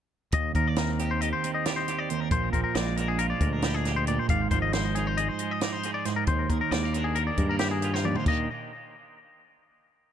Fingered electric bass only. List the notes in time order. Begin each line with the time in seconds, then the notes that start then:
0.33 D#2
0.55 D#2
2.31 A#1
2.53 A#1
2.75 A#1
3.41 D2
4.29 G#1
4.51 G#1
6.28 D#2
6.50 D#2
6.71 D#2
7.38 G2
8.26 D#2